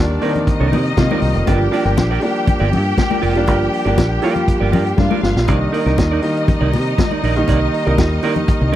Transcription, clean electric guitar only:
0.11 muted clean electric guitar stroke
0.22 D#4 A#4 D5
0.35 muted clean electric guitar stroke
0.46 muted clean electric guitar stroke
0.60 D#4 A#4 D5
0.72 D#4 A#4 D5
0.86 muted clean electric guitar stroke
0.98 muted clean electric guitar stroke
1.11 D#4 A#4 D5
1.23 muted clean electric guitar stroke
1.36 muted clean electric guitar stroke
1.47 F4 A#4 D5
1.61 muted clean electric guitar stroke
1.72 F4 A#4 D5
1.86 F4 A#4
1.97 muted clean electric guitar stroke
2.11 F4 A#4 D5
2.22 muted clean electric guitar stroke
2.35 muted clean electric guitar stroke
2.47 muted clean electric guitar stroke
2.60 F4 A#4 D5
2.72 muted clean electric guitar stroke
2.85 muted clean electric guitar stroke
2.97 muted clean electric guitar stroke
3.10 F4 A#4 D5
3.22 F4 A#4 D5
3.36 muted clean electric guitar stroke
3.48 F4 A#4 D5
3.60 muted clean electric guitar stroke
3.73 muted clean electric guitar stroke
3.85 F4 A#4 D5
4.11 muted clean electric guitar stroke
4.22 F4 A#4 D5
4.36 muted clean electric guitar stroke
4.47 muted clean electric guitar stroke
4.60 F4 A#4 D5
4.72 F4 A#4 D5
4.86 muted clean electric guitar stroke
4.98 muted clean electric guitar stroke
5.10 F4 A#4 D5
5.23 muted clean electric guitar stroke
5.36 muted clean electric guitar stroke
5.48 D#4 A#4 D5
5.61 muted clean electric guitar stroke
5.72 D#4 A#4 D5
5.86 D#4 A#4 D5
6.12 D#4 A#4 D5
6.23 muted clean electric guitar stroke
6.37 muted clean electric guitar stroke
6.48 muted clean electric guitar stroke
6.61 D#4 A#4 D5
6.73 muted clean electric guitar stroke
6.86 muted clean electric guitar stroke
6.98 muted clean electric guitar stroke
7.11 D#4 A#4 D5
7.23 D#4 A#4 D5
7.37 muted clean electric guitar stroke
7.48 D#4 A#4 D5
7.62 muted clean electric guitar stroke
7.73 muted clean electric guitar stroke
7.86 D#4 A#4 D5
8.11 muted clean electric guitar stroke
8.23 D#4 A#4 D5
8.36 muted clean electric guitar stroke
8.47 muted clean electric guitar stroke
8.61 muted clean electric guitar stroke
8.72 D#4 A#4

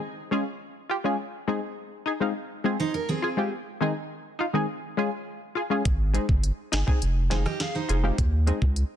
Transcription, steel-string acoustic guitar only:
2.80 D#4 C5
2.94 A#4
3.09 C4 G#4
7.31 D#4 C5
7.46 G4 D#5
7.60 G#4 F5
7.75 D#4 C5

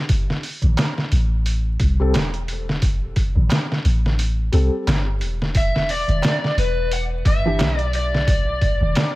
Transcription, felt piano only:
2.00 G3 C4 A4
4.52 G3 C4 A4
7.45 E3 D4 G4

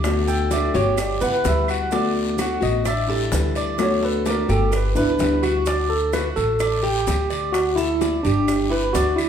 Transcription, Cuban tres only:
Already playing: D5
0.27 A4
0.51 D4
0.74 G4
1.21 B4
1.69 F#4
1.92 D4
2.39 F#4
2.86 D4
3.10 A4
3.56 D5
4.03 A4
4.26 D4
4.50 G4
4.97 B4
5.43 F#4
5.67 D4
6.13 F#4
6.60 D5
6.83 G4
7.30 D5
7.77 A4
8.01 D5
8.25 G4
8.71 B4
8.95 D4

